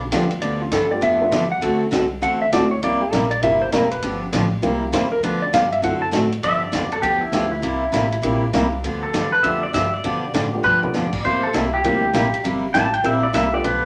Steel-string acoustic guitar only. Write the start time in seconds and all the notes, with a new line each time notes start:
0.12 D3 F3 B3 D4 G4
0.42 D3 F3 B3 D4 G4
0.72 D3 F3 B3 D4 G4
1.01 D3 F3 B3 D4 G4
1.31 D3 F3 B3 D4 G4
1.61 D3 A3 C4 F#4 A4
1.91 D3 A3 C4 F#4 A4
2.21 D3 A3 C4 F#4 A4
2.52 D3 A3 C4 F#4 A4
2.82 C3 G3 A#3 E4 G4
3.12 C3 G3 A#3 E4 G4
3.42 C3 G3 A#3 E4 G4
3.73 C3 G3 A#3 E4 G4
4.03 D3 F3 B3 D4 G4
4.33 D3 F3 B3 D4 G4
4.62 C3 G3 A#3 E4 G4
4.92 C3 G3 A#3 E4 G4
5.23 D3 F3 B3 D4 G4
5.53 D3 F3 B3 D4 G4
5.82 D3 A3 C4 F#4 A4
6.11 D3 A3 C4 F#4 A4
6.43 D3 F3 B3 D4 G4
6.72 D3 F3 B3 D4 G4
7.02 D3 F3 B3 D4 G4
7.32 D3 F3 B3 D4 G4
7.62 C3 G3 A#3 E4 G4
7.92 C3 G3 A#3 E4 G4
8.22 C3 G3 A#3 E4 G4
8.53 C3 G3 A#3 E4 G4
8.84 D3 F3 B3 D4 G4
9.13 D3 F3 B3 D4 G4
9.43 D3 F3 B3 D4 G4
9.73 D3 F3 B3 D4 G4
10.04 D3 F3 B3 D4 G4
10.34 D3 F3 B3 D4 G4
10.63 D3 F3 B3 D4 G4
10.94 D3 F3 B3 D4 G4
11.24 C3 G3 A#3 E4 G4
11.53 C3 G3 A#3 E4 G4
11.84 C3 G3 A#3 E4 G4
12.13 C3 G3 A#3 E4 G4
12.44 C3 G3 A#3 E4 G4
12.74 C3 G3 A#3 E4 G4
13.04 C3 G3 A#3 E4 G4
13.33 C3 G3 A#3 E4 G4
13.64 D3 F3 B3 D4 G4